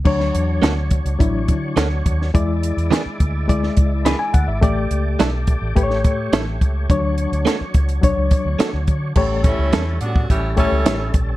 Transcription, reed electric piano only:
\new Staff \with { instrumentName = "Reed electric piano" } { \time 4/4 \key d \major \tempo 4 = 106 << { r1 | r2. b''16 gis''16 fis''16 e''16~ | e''16 r2. r8. | r1 |
r1 | } \\ { <fis d' cis''>4 r4 <fis d' e'>4 r4 | <gis e' d''>4 r4 <gis e' d''>4 r4 | <a g' d''>4 r4 <a g' b' cis''>4 r4 | <fis d' cis''>4 r4 <fis d' cis''>4 r4 |
<a g' cis''>4 r4. <a g' cis''>8. r8. | } >> }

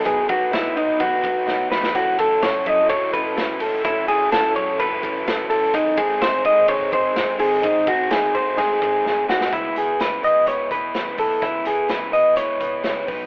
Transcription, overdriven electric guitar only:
\new Staff \with { instrumentName = "Overdriven electric guitar" } { \time 4/4 \key cis \minor \tempo 4 = 127 <b, dis fis b dis' b'>8 <fis b dis' b'>8 <fis b dis' b'>8 <fis b dis' b'>8 <b, dis fis b dis' b'>8 <fis b dis' b'>8 <fis b dis' b'>8 <fis b dis' b'>8 | <fis cis' e' a'>8 <cis' e' a'>8 <fis cis' e' a'>8 <cis' e' a'>8 <fis cis' e' a'>8 <cis' e' a'>8 <fis cis' e' a'>8 <cis' e' a'>8 | <fis cis' e' a'>8 <cis' e' a'>8 <fis cis' e' a'>8 <cis' e' a'>8 <fis cis' e' a'>8 <cis' e' a'>8 <fis cis' e' a'>8 <cis' e' a'>8 | <gis, dis gis bis dis' gis'>8 <gis bis dis' gis'>8 <gis bis dis' gis'>8 <gis bis dis' gis'>8 <gis, dis gis bis dis' gis'>8 <gis bis dis' gis'>8 <gis bis dis' gis'>8 <gis bis dis' gis'>8 |
<gis, dis gis bis dis' gis'>8 <gis bis dis' gis'>8 <gis bis dis' gis'>8 <gis bis dis' gis'>8 <gis, dis gis bis dis' gis'>8 <gis bis dis' gis'>8 <gis bis dis' gis'>8 <gis bis dis' gis'>8 | <cis gis b e' b'>8 <b e' b'>8 <cis gis b e' b'>8 <b e' b'>8 <gis b e' b'>8 <b e' b'>8 <cis gis b e' b'>8 <b e' b'>8 | <cis gis b e' b'>8 <b e' b'>8 <cis gis b e' b'>8 <b e' b'>8 <gis b e' b'>8 <b e' b'>8 <cis gis b e' b'>8 <fis b dis' b'>8 | }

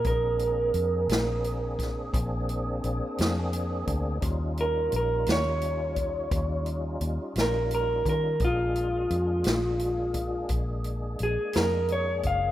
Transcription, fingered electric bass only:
\new Staff \with { instrumentName = "Fingered electric bass" } { \clef bass \time 12/8 \key bes \mixolydian \tempo 4. = 57 bes,,4 f,8 bes,,4. bes,,4 bes,,16 r16 f,4 d,8 | ees,4 bes,,8 ees,4. ees,4 ees,16 r16 bes,,4 ees8 | bes,,4 f,8 bes,,4. bes,,4 bes,,16 r16 f,4 ges,,8 | }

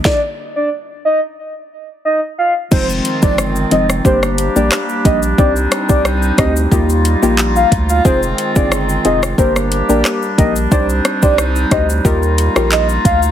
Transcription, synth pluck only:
\new Staff \with { instrumentName = "Synth pluck" } { \time 4/4 \key f \dorian \tempo 4 = 90 r1 | <f aes c' ees'>16 r8 <f aes c' ees'>16 r8 <f aes c' ees'>16 r16 <g bes d' g'>8. <g bes d' g'>16 r8 <g bes d' g'>16 r16 | <c' d' ees' g'>16 r8 <c' d' ees' g'>16 r8 <c' d' ees' g'>16 r16 <bes ees' f' g'>8. <bes ees' f' g'>16 r4 | <c' ees' f' aes'>16 r8 <c' ees' f' aes'>16 r8 <c' ees' f' aes'>16 r16 <bes d' g' bes'>8. <bes d' g' bes'>16 r8 <bes d' g' bes'>16 r16 |
<d' ees' g' c''>16 r8 <d' ees' g' c''>16 r8 <d' ees' g' c''>16 r16 <ees' f' g' bes'>8. <ees' f' g' bes'>16 r4 | }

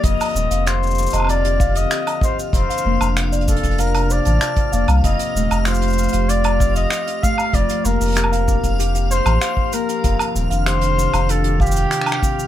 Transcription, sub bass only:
\new Staff \with { instrumentName = "Sub bass" } { \clef bass \time 4/4 \key c \dorian \tempo 4 = 96 f,,16 r16 ees,,16 f,,4 f,,4~ f,,16 r4 | f,,16 r16 f,,16 f,,4 f,,4 a,,16 r8 f,,16 c,16 | f,,16 r16 ees,,16 f,,4 f,,4~ f,,16 r4 | f,,16 r16 f,,16 f,,4 f,,4 a,,16 r4 |
f,,16 r16 ees,,16 f,,4 f,,4~ f,,16 r4 | }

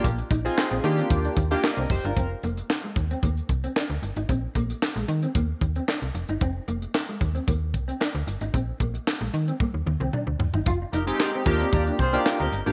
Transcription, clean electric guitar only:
\new Staff \with { instrumentName = "Clean electric guitar" } { \time 4/4 \key ees \major \tempo 4 = 113 bes16 r16 ees'16 r8 c'16 r16 c'16 r16 d'16 r16 ees'16 r16 c'16 r16 d'16 | c'16 r16 bes16 r8 aes16 r16 c'16 bes16 r8 c'16 d'16 r8 ees'16 | c'16 r16 bes16 r8 aes16 r16 c'16 bes16 r8 c'16 d'16 r8 ees'16 | c'16 r16 bes16 r8 aes16 r16 c'16 bes16 r8 c'16 d'16 r8 ees'16 |
c'16 r16 bes16 r8 aes16 r16 c'16 bes16 r8 c'16 d'16 r8 ees'16 | f'16 r16 ees'16 r8 c'16 r16 c'16 r16 d'16 r16 ees'16 r16 c'16 r16 d'16 | }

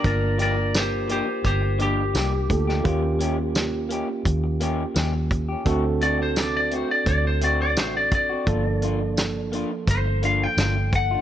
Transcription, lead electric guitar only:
\new Staff \with { instrumentName = "Lead electric guitar" } { \time 4/4 \key g \minor \tempo 4 = 85 <bes' d''>8 <bes' d''>8 <g' c''>8 <g' c''>8 <g' c''>8 g'4.~ | g'4. r2 r8 | r8 d''16 c''16 d''16 d''16 c''16 d''16 d''16 c''16 d''16 d''16 c''16 d''16 d''8~ | d''4. r8 c''8 f''16 g''8. fis''8 | }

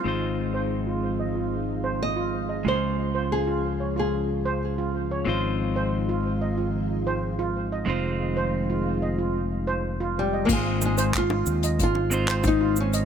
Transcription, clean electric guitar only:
\new Staff \with { instrumentName = "Clean electric guitar" } { \time 4/4 \key aes \major \tempo 4 = 92 <aes c' ees' f' c''>1 | <aes des' f' c'''>1 | <aes c' ees' f' c''>1 | <aes c' ees' f' c''>1 |
<aes c' ees' f' c''>2~ <aes c' ees' f' c''>8 <aes c' ees' f' c''>4. | }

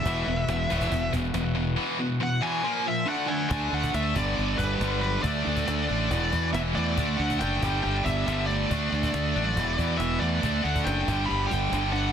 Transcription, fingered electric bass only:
\new Staff \with { instrumentName = "Fingered electric bass" } { \clef bass \time 4/4 \key d \lydian \tempo 4 = 138 e,,8 e,,8 e,,8 e,,8 e,,8 e,,8 e,,4 | r1 | d,8 d,8 d,8 g,,8 g,,8 g,,8 g,,4 | d,8 d,8 d,8 a,,8 e,,8 e,8 e,,8 e,8 |
d,8 d,8 fis,,8 g,,8 g,,8 g,,8 g,,4 | d,8 d,8 d,8 a,,8 e,,8 e,8 e,,8 e,8 | d,8 d,8 fis,,8 g,,8 g,,8 g,,8 g,,4 | }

